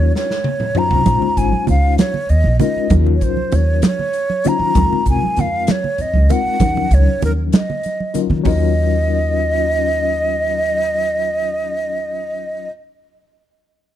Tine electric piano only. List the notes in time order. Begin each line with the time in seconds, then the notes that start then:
Already playing: F#3 C#4 D#4 F4 A#4
0.76 F#3 C#4 D#4 F4 C5
1.06 G#3 C#4 D#4 F4 C5
2.60 G#3 C#4 D#4 F4 A#4
2.91 F#3 C#4 D#4 F4 A#4
4.45 F#3 C#4 D#4 F4 C5
4.75 G#3 C4 D#4 F4 A#4
6.29 G#3 C4 D#4 F4 A#4
6.60 F3 F#3 C#4 D#4 A#4
8.14 F#3 C#4 D#4 F4 A#4
8.43 F#3 C#4 D#4 F4 A#4